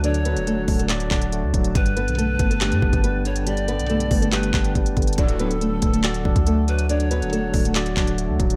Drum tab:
HH |x-x-x-x-x---o-x-x-x---x-x---x-x-|x-x-x-x-x---x-x-x-x---x-x---x-x-|x-x-x-x-x-x-o-x-x-x---x-x-x-xxxx|x-x-x-x-x---x-x-x-x---x-x---x-x-|
CP |----------------x---x-----------|----------------x---------------|----------------x---x-----------|----------------x---------------|
BD |------------o-------o-------o---|o-----------o-------o-o---------|------------o-------o---o---o---|o-----------o-------o-o---------|

HH |x-x-x-x-x---o-x-x-x---x-x---x-x-|
CP |----------------x---x-----------|
BD |------------o-------o-------o---|